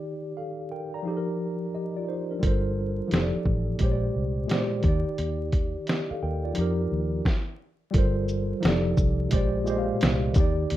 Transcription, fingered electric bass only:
2.43 G1
3.12 F1
3.36 muted fingered electric bass stroke
3.46 A1
3.81 A#1
4.16 C2
4.84 D#2
5.19 D#2
6.11 muted fingered electric bass stroke
6.23 D#2
6.58 F2
6.92 D#2
7.95 G1
8.64 F1
8.98 C2
9.33 A#1
10.03 C2
10.36 D#2
10.72 D#2

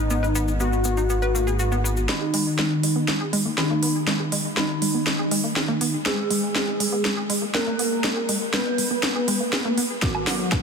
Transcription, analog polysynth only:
Already playing: D#4
0.60 F#4
2.09 D#3 D#4
3.58 D#3 D#4
4.57 D#3 D#4
6.06 G#3 G#4
7.54 A#3 A#4
8.53 B3 B4
10.02 F#3 F#4

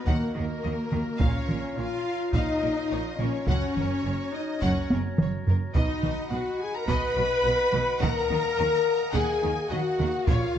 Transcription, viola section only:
0.07 A#3
0.36 A#3
1.19 C#4
1.77 F4
2.33 D#4
3.18 C#4
3.46 C#4
4.32 D#4
4.62 C#4
5.75 D#4
6.31 F#4
6.61 G#4
6.75 A#4
6.89 B4
8.00 A#4
9.14 G#4
9.70 F#4
10.27 F4

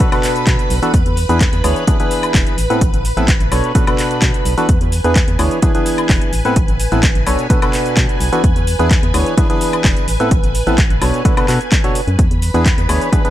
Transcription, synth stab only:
0.00 B2 B3 D4 F#4 A4 B4
0.12 B2 B3 D4 F#4 A4 B4
0.82 E3 B3 D4 F#4 A4 B4
1.29 E3 B3 D4 E4 G#4 B4
1.64 E3 B3 D4 E4 G#4 C#5
1.88 E3 B3 D4 E4 G#4 B4
2.00 E3 B3 D4 E4 G#4 B4
2.70 A2 B3 C4 E4 A4 B4
3.17 A2 B3 C4 E4 A4 B4
3.52 B2 B3 D4 F#4 A4 C#5
3.75 B2 B3 D4 F#4 A4 B4
3.87 B2 B3 D4 F#4 A4 B4
4.58 E3 B3 D4 F#4 A4 B4
5.04 E3 B3 D4 E4 G#4 B4
5.39 E3 B3 D4 E4 G#4 C#5
5.63 E3 B3 D4 E4 G#4 B4
5.75 E3 B3 D4 E4 G#4 B4
6.45 A2 B3 C4 E4 A4 B4
6.92 A2 B3 C4 E4 A4 B4
7.27 B2 B3 D4 F#4 A4 C#5
7.50 B2 B3 D4 F#4 A4 B4
7.62 B2 B3 D4 F#4 A4 B4
8.32 E3 B3 D4 F#4 A4 B4
8.79 E3 B3 D4 E4 G#4 B4
9.14 E3 B3 D4 E4 G#4 C#5
9.37 E3 B3 D4 E4 G#4 B4
9.50 E3 B3 D4 E4 G#4 B4
10.20 A2 B3 C4 E4 A4 B4
10.67 A2 B3 C4 E4 A4 B4
11.02 B2 B3 D4 F#4 A4 C#5
11.25 B2 B3 D4 F#4 A4 B4
11.37 B2 B3 D4 F#4 A4 B4
11.48 B2 B3 D4 F#4 A4 B4
11.84 B2 B3 D4 F#4 A4 C#5
12.54 E3 B3 D4 E4 G#4 B4
12.89 E3 B3 D4 E4 G#4 C#5
13.13 E3 B3 D4 E4 G#4 B4
13.25 E3 B3 D4 E4 G#4 B4

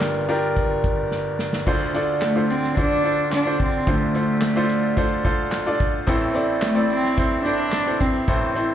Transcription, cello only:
2.23 A3
2.50 C4
2.78 D4
3.34 D4
3.62 C4
3.89 A3
6.64 A3
6.91 C4
7.45 D4
8.00 C4

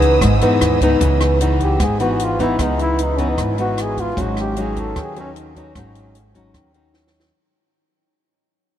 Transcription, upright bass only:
Already playing: C#2
0.21 G#1
0.42 E2
0.61 D#2
0.81 C#2
1.01 C#2
1.80 G#1
2.59 C#2
3.37 G#1
4.17 G#1
4.96 D#2
5.75 G#1
6.54 D#2

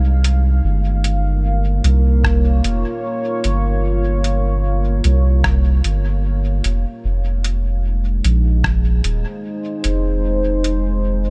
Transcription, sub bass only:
Already playing: C2
0.64 G1
1.84 C2
2.64 F1
3.44 G1
5.04 C2
5.85 G1
6.65 F1
7.04 F1
8.24 A#1
9.04 D#1
9.84 F1

